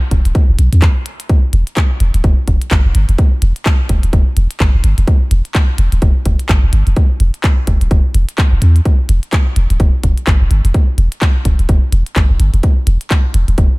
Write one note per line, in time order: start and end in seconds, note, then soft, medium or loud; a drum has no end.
0.11 0.22 E1 medium
0.11 kick medium
0.11 closed hi-hat medium
0.25 0.32 D1 medium
0.25 closed hi-hat medium
0.35 kick loud
0.35 closed hi-hat soft
0.49 0.56 E1 loud
0.59 0.69 B1 medium
0.59 closed hi-hat medium
0.72 0.89 E2 medium
0.72 closed hi-hat medium
0.82 kick loud
0.82 clap loud
0.82 closed hi-hat soft
1.06 closed hi-hat medium
1.20 closed hi-hat medium
1.29 kick loud
1.29 closed hi-hat soft
1.53 1.63 E1 loud
1.53 closed hi-hat medium
1.67 closed hi-hat medium
1.77 kick loud
1.77 clap medium
1.77 closed hi-hat soft
2.00 2.11 E1 medium
2.00 closed hi-hat medium
2.14 2.21 D1 medium
2.14 closed hi-hat medium
2.24 2.34 E1 loud
2.24 kick loud
2.24 closed hi-hat soft
2.48 2.58 E1 loud
2.48 kick medium
2.48 closed hi-hat medium
2.62 closed hi-hat medium
2.71 2.82 G1 medium
2.71 kick loud
2.71 clap loud
2.71 closed hi-hat soft
2.85 2.92 E1 medium
2.95 3.05 G1 medium
2.95 closed hi-hat medium
3.09 3.16 E1 medium
3.09 closed hi-hat medium
3.18 kick loud
3.18 closed hi-hat soft
3.42 3.52 E1 loud
3.42 closed hi-hat loud
3.56 closed hi-hat medium
3.66 kick loud
3.66 clap loud
3.66 closed hi-hat soft
3.89 4.00 E1 medium
3.89 kick medium
3.89 closed hi-hat loud
4.03 4.10 D1 medium
4.03 closed hi-hat medium
4.13 4.23 E1 loud
4.13 kick loud
4.13 closed hi-hat soft
4.37 4.47 E1 loud
4.37 closed hi-hat loud
4.51 closed hi-hat medium
4.60 4.71 G1 medium
4.60 kick loud
4.60 clap loud
4.60 closed hi-hat soft
4.74 4.81 E1 medium
4.84 4.94 G1 medium
4.84 closed hi-hat loud
4.98 5.05 E1 medium
4.98 closed hi-hat medium
5.07 kick loud
5.07 closed hi-hat soft
5.31 5.41 E1 loud
5.31 closed hi-hat loud
5.45 closed hi-hat medium
5.55 kick loud
5.55 clap medium
5.55 closed hi-hat soft
5.78 5.89 E1 medium
5.78 closed hi-hat loud
5.92 5.99 D1 medium
5.92 closed hi-hat soft
6.02 6.12 E1 loud
6.02 kick loud
6.02 closed hi-hat soft
6.26 6.36 E1 loud
6.26 kick medium
6.26 closed hi-hat loud
6.39 closed hi-hat medium
6.49 6.60 G1 medium
6.49 kick loud
6.49 clap loud
6.49 closed hi-hat soft
6.63 6.70 E1 medium
6.73 6.83 G1 medium
6.73 closed hi-hat medium
6.87 6.94 E1 medium
6.87 closed hi-hat medium
6.96 kick loud
6.96 closed hi-hat soft
7.20 7.30 E1 loud
7.20 closed hi-hat loud
7.34 closed hi-hat soft
7.44 kick loud
7.44 clap medium
7.44 closed hi-hat soft
7.67 7.78 E1 medium
7.67 kick medium
7.67 closed hi-hat loud
7.81 7.88 D1 medium
7.81 closed hi-hat medium
7.91 8.01 E1 loud
7.91 kick loud
7.91 closed hi-hat soft
8.14 8.25 E1 loud
8.14 closed hi-hat medium
8.29 closed hi-hat medium
8.38 kick loud
8.38 clap medium
8.38 closed hi-hat soft
8.52 8.59 E1 loud
8.62 8.80 E2 medium
8.62 closed hi-hat loud
8.76 closed hi-hat soft
8.85 kick loud
8.85 closed hi-hat soft
9.09 9.19 E1 loud
9.09 closed hi-hat loud
9.23 closed hi-hat medium
9.33 kick loud
9.33 clap medium
9.33 closed hi-hat soft
9.56 9.67 E1 medium
9.56 closed hi-hat medium
9.70 9.77 D1 medium
9.70 closed hi-hat soft
9.80 9.90 E1 loud
9.80 kick loud
9.80 closed hi-hat soft
10.04 10.14 E1 loud
10.04 kick medium
10.04 closed hi-hat medium
10.18 closed hi-hat medium
10.27 10.37 G1 medium
10.27 kick loud
10.27 clap medium
10.27 closed hi-hat soft
10.41 10.48 E1 medium
10.51 10.61 G1 medium
10.51 closed hi-hat medium
10.64 10.72 E1 medium
10.64 closed hi-hat medium
10.74 kick loud
10.74 closed hi-hat soft
10.98 11.08 E1 loud
10.98 closed hi-hat medium
11.12 closed hi-hat medium
11.22 kick loud
11.22 clap medium
11.22 closed hi-hat soft
11.45 11.56 E1 medium
11.45 kick medium
11.45 closed hi-hat medium
11.59 11.66 D1 medium
11.59 closed hi-hat medium
11.69 11.79 E1 loud
11.69 kick loud
11.69 closed hi-hat soft
11.92 12.03 E1 loud
11.92 closed hi-hat medium
12.06 closed hi-hat medium
12.16 12.26 G1 medium
12.16 kick loud
12.16 clap medium
12.16 closed hi-hat soft
12.30 12.37 E1 loud
12.39 12.50 G1 medium
12.39 closed hi-hat medium
12.54 12.61 E1 medium
12.54 closed hi-hat medium
12.63 kick loud
12.63 closed hi-hat soft
12.87 12.97 E1 loud
12.87 closed hi-hat medium
13.01 closed hi-hat medium
13.11 kick loud
13.11 clap medium
13.11 closed hi-hat soft
13.34 13.45 E1 medium
13.34 closed hi-hat medium
13.48 13.55 D1 medium
13.48 closed hi-hat medium
13.58 13.68 E1 loud
13.58 kick loud
13.58 closed hi-hat soft